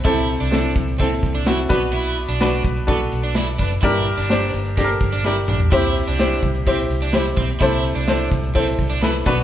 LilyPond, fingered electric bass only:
\new Staff \with { instrumentName = "Fingered electric bass" } { \clef bass \time 4/4 \key a \dorian \tempo 4 = 127 c,8. c,8. c,4 c,4 b,,8~ | b,,8. b,,8. b,,4 b,,4 fis,,8 | g,,8. g,,8. g,,4 g,,4 bes,,8 | c,8. c,8. c,4 c,4 b,,8 |
c,8. c,8. c,4 c,4 b,,8 | }